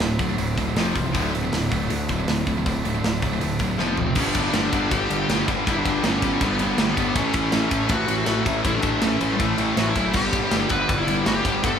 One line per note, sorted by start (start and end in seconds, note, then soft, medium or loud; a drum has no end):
0.00 0.17 D1 medium
0.00 0.17 D2 medium
0.00 0.18 D2 medium
0.00 0.18 A2 medium
0.00 0.18 D3 medium
0.00 0.19 F#3 loud
0.00 0.18 A3 loud
0.00 0.17 D4 loud
0.00 snare loud
0.00 open hi-hat medium
0.18 0.36 D1 medium
0.18 0.28 D2 medium
0.18 0.75 D2 medium
0.18 0.28 A2 medium
0.18 0.76 A2 medium
0.18 0.75 D3 medium
0.18 0.75 F#3 medium
0.18 0.75 A3 medium
0.18 0.74 D4 medium
0.18 kick medium
0.18 open hi-hat medium
0.29 0.37 D2 medium
0.29 0.37 A2 medium
0.37 0.55 D1 medium
0.37 0.55 D2 medium
0.37 0.55 A2 medium
0.37 open hi-hat medium
0.56 0.75 D1 medium
0.56 0.66 D2 medium
0.56 0.66 A2 medium
0.56 kick medium
0.56 open hi-hat medium
0.67 0.76 D2 medium
0.67 0.76 A2 medium
0.75 0.93 F1 medium
0.75 1.12 F2 medium
0.75 0.94 F2 medium
0.75 1.12 C3 loud
0.75 0.94 C3 loud
0.75 0.95 F3 medium
0.75 1.14 F3 loud
0.75 snare loud
0.75 open hi-hat medium
0.95 1.12 C1 medium
0.95 1.03 F2 medium
0.95 1.03 C3 medium
0.95 kick medium
0.95 open hi-hat medium
1.04 1.12 F2 medium
1.04 1.13 C3 medium
1.12 1.49 D1 medium
1.12 1.31 D2 medium
1.12 1.69 D2 medium
1.12 1.69 A2 medium
1.12 1.31 A2 medium
1.12 1.32 D3 loud
1.12 1.70 D3 medium
1.12 1.69 F#3 loud
1.12 1.68 A3 loud
1.12 1.68 D4 loud
1.12 kick loud
1.12 open hi-hat medium
1.32 1.41 D2 medium
1.32 1.42 A2 medium
1.32 open hi-hat medium
1.42 1.51 D2 medium
1.42 1.51 A2 medium
1.52 1.69 D1 medium
1.52 1.69 D2 medium
1.52 1.69 A2 medium
1.52 snare loud
1.52 open hi-hat medium
1.69 1.88 D1 medium
1.69 2.63 D2 medium
1.69 1.79 D2 medium
1.69 2.64 A2 medium
1.69 1.79 A2 medium
1.69 2.64 D3 medium
1.69 2.64 F#3 medium
1.69 2.63 A3 medium
1.69 2.63 D4 medium
1.69 kick medium
1.69 open hi-hat medium
1.80 1.89 D2 medium
1.80 1.88 A2 medium
1.90 2.07 D2 medium
1.90 2.07 A2 medium
1.90 open hi-hat medium
2.09 2.26 D1 medium
2.09 2.18 D2 medium
2.09 2.17 A2 medium
2.09 kick medium
2.09 open hi-hat medium
2.19 2.28 D2 medium
2.19 2.28 A2 medium
2.27 2.44 D1 medium
2.27 2.46 D2 medium
2.27 2.46 A2 medium
2.27 snare loud
2.27 open hi-hat medium
2.47 2.64 D1 medium
2.47 2.57 D2 medium
2.47 2.57 A2 medium
2.47 kick medium
2.47 open hi-hat medium
2.58 2.65 D2 medium
2.58 2.66 A2 medium
2.64 2.83 D1 medium
2.64 3.20 D2 medium
2.64 2.83 D2 medium
2.64 3.21 A2 medium
2.64 2.83 A2 medium
2.64 3.21 D3 loud
2.64 3.21 F#3 medium
2.64 3.20 A3 loud
2.64 3.20 D4 loud
2.64 kick loud
2.64 open hi-hat medium
2.84 3.01 D1 medium
2.84 2.94 D2 medium
2.84 2.93 A2 medium
2.84 open hi-hat medium
2.94 3.03 D2 medium
2.94 3.03 A2 medium
3.04 3.20 D1 medium
3.04 3.20 D2 medium
3.04 3.21 A2 loud
3.04 snare loud
3.04 open hi-hat medium
3.21 3.39 D1 medium
3.21 3.77 D2 medium
3.21 3.32 D2 medium
3.21 3.32 A2 medium
3.21 3.78 A2 medium
3.21 3.78 D3 medium
3.21 3.77 F#3 medium
3.21 3.77 A3 medium
3.21 3.77 D4 medium
3.21 kick medium
3.21 open hi-hat medium
3.33 3.40 D2 medium
3.33 3.41 A2 medium
3.41 3.58 D1 medium
3.41 3.58 D2 medium
3.41 3.58 A2 medium
3.41 open hi-hat medium
3.59 3.77 D1 medium
3.59 3.68 D2 medium
3.59 3.67 A2 medium
3.59 kick medium
3.59 open hi-hat medium
3.69 3.77 D2 medium
3.69 3.78 A2 medium
3.77 3.95 F1 medium
3.77 3.96 F2 medium
3.77 4.14 F2 medium
3.77 3.96 C3 loud
3.77 4.15 C3 medium
3.77 3.96 F3 medium
3.77 4.16 F3 loud
3.77 snare medium
3.82 3.89 B3 medium
3.93 4.19 C4 medium
3.97 4.14 F1 medium
3.97 4.05 F2 medium
3.97 4.05 C3 medium
3.97 floor tom medium
4.06 4.16 F2 medium
4.06 4.16 C3 medium
4.14 4.30 G1 loud
4.14 5.45 G2 medium
4.14 4.33 G2 loud
4.14 5.46 D3 loud
4.14 4.33 D3 loud
4.14 5.46 G3 loud
4.14 4.35 G3 loud
4.14 5.46 B3 loud
4.14 5.46 D4 medium
4.14 5.46 G4 loud
4.14 kick loud
4.14 crash loud
4.20 4.95 D4 medium
4.33 4.49 G1 medium
4.33 4.52 G2 medium
4.33 4.52 D3 medium
4.33 4.53 G3 loud
4.33 kick medium
4.33 ride medium
4.53 4.67 G1 loud
4.53 4.70 G2 loud
4.53 4.70 D3 loud
4.53 4.71 G3 loud
4.53 snare loud
4.53 ride loud
4.70 4.86 G1 loud
4.70 4.88 G2 medium
4.70 4.88 D3 loud
4.70 4.89 G3 loud
4.70 kick medium
4.70 ride medium
4.89 5.05 G1 loud
4.89 5.08 G2 medium
4.89 5.08 D3 loud
4.89 5.08 G3 loud
4.89 5.43 G4 medium
4.89 kick loud
4.89 ride loud
5.09 5.24 G1 medium
5.09 5.28 G2 loud
5.09 5.29 D3 loud
5.09 5.29 G3 loud
5.09 ride medium
5.29 5.42 G1 loud
5.29 5.45 G2 medium
5.29 5.46 D3 medium
5.29 5.46 G3 loud
5.29 snare loud
5.29 ride loud
5.46 5.62 G1 medium
5.46 5.63 G2 medium
5.46 5.64 G2 medium
5.46 5.64 D3 medium
5.46 5.65 D3 medium
5.46 5.65 G3 loud
5.46 5.66 G3 medium
5.46 5.65 B3 medium
5.46 5.65 D4 medium
5.46 5.65 G4 medium
5.46 kick medium
5.46 ride medium
5.65 5.81 G1 loud
5.65 5.83 G2 loud
5.65 6.95 G2 medium
5.65 5.84 D3 loud
5.65 6.96 D3 medium
5.65 5.84 G3 loud
5.65 6.96 G3 loud
5.65 6.96 B3 loud
5.65 6.95 D4 loud
5.65 kick loud
5.65 ride loud
5.69 5.78 E4 medium
5.69 6.95 G4 loud
5.79 6.04 D4 medium
5.84 5.99 G1 medium
5.84 6.02 G2 medium
5.84 6.02 D3 loud
5.84 6.03 G3 loud
5.84 kick medium
5.84 ride medium
6.03 6.17 G1 loud
6.03 6.22 G2 loud
6.03 6.22 D3 loud
6.03 6.23 G3 loud
6.03 6.42 C#4 medium
6.03 snare loud
6.03 ride loud
6.22 6.36 G1 loud
6.22 6.40 G2 medium
6.22 6.40 D3 loud
6.22 6.41 G3 loud
6.22 kick medium
6.22 ride medium
6.41 6.55 G1 loud
6.41 6.58 G2 medium
6.41 6.58 D3 loud
6.41 6.59 G3 loud
6.41 6.78 B3 medium
6.41 kick loud
6.41 ride loud
6.59 6.73 G1 loud
6.59 6.78 G2 loud
6.59 6.78 D3 loud
6.59 6.79 G3 loud
6.59 ride medium
6.78 6.92 G1 loud
6.78 6.96 G2 medium
6.78 6.97 D3 medium
6.78 6.98 G3 loud
6.78 6.88 A3 medium
6.78 snare loud
6.78 ride loud
6.90 7.17 B3 medium
6.96 7.11 G1 medium
6.96 7.14 G2 medium
6.96 7.13 G2 medium
6.96 7.14 D3 medium
6.96 7.15 D3 medium
6.96 7.15 G3 medium
6.96 7.15 G3 loud
6.96 7.14 B3 medium
6.96 7.14 D4 medium
6.96 7.14 G4 medium
6.96 kick medium
6.96 ride medium
7.13 7.29 A1 loud
7.13 8.44 A2 loud
7.13 7.32 A2 loud
7.13 8.44 E3 loud
7.13 7.33 E3 loud
7.13 8.45 A3 loud
7.13 7.33 A3 loud
7.13 8.45 C#4 loud
7.13 8.44 E4 loud
7.13 8.44 A4 loud
7.13 kick loud
7.13 ride loud
7.17 7.93 C#4 loud
7.33 7.48 A1 medium
7.33 7.52 A2 medium
7.33 7.53 E3 loud
7.33 7.54 A3 loud
7.33 kick medium
7.33 ride medium
7.52 7.66 A1 loud
7.52 7.69 A2 loud
7.52 7.70 E3 loud
7.52 7.71 A3 loud
7.52 snare loud
7.52 ride loud
7.69 7.85 A1 loud
7.69 7.87 A2 loud
7.69 7.88 E3 medium
7.69 7.89 A3 loud
7.69 kick medium
7.69 ride medium
7.88 8.03 A1 loud
7.88 8.05 A2 medium
7.88 8.06 E3 medium
7.88 8.07 A3 loud
7.88 8.42 F#4 loud
7.88 kick loud
7.88 ride loud
8.06 8.22 A1 medium
8.06 8.24 A2 loud
8.06 8.24 E3 loud
8.06 8.25 A3 loud
8.06 ride medium
8.25 8.41 A1 medium
8.25 8.42 A2 medium
8.25 8.43 E3 medium
8.25 8.44 A3 loud
8.25 snare loud
8.25 ride loud
8.44 8.60 A1 loud
8.44 8.60 A2 medium
8.44 8.61 E3 medium
8.44 8.62 E3 medium
8.44 8.61 A3 medium
8.44 8.63 A3 medium
8.44 8.63 C#4 medium
8.44 8.63 E4 medium
8.44 8.63 A4 medium
8.44 kick medium
8.44 ride medium
8.48 8.61 A2 medium
8.62 8.79 A1 loud
8.62 8.80 A2 loud
8.62 9.93 A2 loud
8.62 8.81 E3 loud
8.62 9.93 E3 loud
8.62 8.81 A3 loud
8.62 9.94 A3 loud
8.62 9.94 C#4 loud
8.62 9.94 E4 loud
8.62 9.93 A4 loud
8.62 kick loud
8.62 ride loud
8.66 8.75 E4 loud
8.76 9.03 D4 medium
8.81 8.97 A1 loud
8.81 9.00 A2 medium
8.81 9.01 E3 loud
8.81 9.02 A3 loud
8.81 kick medium
8.81 ride medium
9.01 9.15 A1 medium
9.01 9.18 A2 loud
9.01 9.19 E3 loud
9.01 9.19 A3 loud
9.01 9.34 C#4 loud
9.01 snare loud
9.01 ride loud
9.19 9.35 A1 medium
9.19 9.37 A2 medium
9.19 9.38 E3 medium
9.19 9.39 A3 loud
9.19 ride medium
9.32 9.39 G3 medium
9.39 9.53 A1 loud
9.39 9.56 A2 loud
9.39 9.57 E3 loud
9.39 9.58 A3 loud
9.39 9.78 A3 medium
9.39 kick loud
9.39 ride loud
9.57 9.72 A1 loud
9.57 9.74 A2 loud
9.57 9.75 E3 loud
9.57 9.75 A3 loud
9.57 ride medium
9.76 9.91 A1 medium
9.76 9.93 A2 medium
9.76 9.95 E3 medium
9.76 9.95 A3 medium
9.76 9.87 F#4 loud
9.76 snare loud
9.76 ride loud
9.89 10.16 E4 loud
9.94 10.14 F#1 medium
9.94 10.12 A2 medium
9.94 10.11 A2 medium
9.94 10.12 E3 medium
9.94 10.13 A3 loud
9.94 10.13 A3 medium
9.94 10.13 C#4 medium
9.94 10.12 E4 medium
9.94 10.12 A4 medium
9.94 kick medium
9.94 ride medium
10.12 10.28 G1 loud
10.12 11.42 G2 loud
10.12 10.30 G2 loud
10.12 10.29 D3 loud
10.12 11.43 D3 loud
10.12 11.43 G3 loud
10.12 10.30 G3 loud
10.12 11.43 B3 medium
10.12 11.43 D4 loud
10.12 11.42 G4 loud
10.12 kick loud
10.12 crash loud
10.17 10.67 G4 loud
10.30 10.46 G1 loud
10.30 10.49 G2 medium
10.30 10.49 D3 loud
10.30 10.50 G3 loud
10.30 kick loud
10.30 ride medium
10.35 10.53 G3 loud
10.49 10.65 G1 medium
10.49 10.69 G2 loud
10.49 10.69 D3 loud
10.49 10.70 G3 loud
10.49 snare loud
10.49 ride loud
10.69 10.84 G1 medium
10.69 10.87 G2 medium
10.69 10.88 D3 medium
10.69 10.88 G3 loud
10.69 10.96 B4 loud
10.69 kick medium
10.69 ride medium
10.88 11.03 G1 loud
10.88 11.06 G2 loud
10.88 11.06 D3 loud
10.88 11.07 G3 loud
10.88 kick loud
10.88 ride loud
10.98 11.26 E4 loud
11.07 11.21 G1 loud
11.07 11.24 G2 loud
11.07 11.24 D3 loud
11.07 11.25 G3 loud
11.07 ride medium
11.25 11.40 G1 loud
11.25 11.42 G2 medium
11.25 11.43 D3 medium
11.25 11.44 G3 loud
11.25 11.35 F#4 loud
11.25 snare loud
11.25 ride loud
11.35 11.64 G4 loud
11.44 11.59 G1 medium
11.44 11.60 G2 medium
11.44 11.61 G2 medium
11.44 11.62 D3 loud
11.44 11.61 D3 medium
11.44 11.62 G3 loud
11.44 11.62 G3 medium
11.44 11.62 B3 medium
11.44 11.62 D4 medium
11.44 11.61 G4 medium
11.44 kick medium
11.44 ride medium
11.61 11.77 G1 loud
11.61 11.79 G2 loud
11.61 11.79 D3 loud
11.61 11.79 G3 loud
11.61 11.79 B3 loud
11.61 11.79 D4 loud
11.61 11.79 G4 loud
11.61 11.79 A4 loud
11.61 kick loud
11.61 ride loud